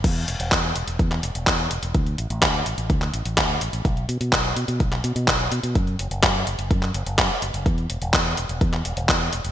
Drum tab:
CC |x---------------|----------------|----------------|----------------|
HH |xxxxxxxxxxxxxxxx|xxxxxxxxxxxxxxxx|xxxxxxxxxxxxxxxx|xxxxxxxxxxxxxxxx|
CP |----x----x--x---|----x----x--x---|----x----x--x---|----x----x--x---|
BD |o---o---o---o---|o---o---o---o---|o---o---o---o---|o---o---o---o---|

CC |----------------|
HH |xxxxxxxxxxxxxxxx|
CP |----x----x--x---|
BD |o---o---o---o---|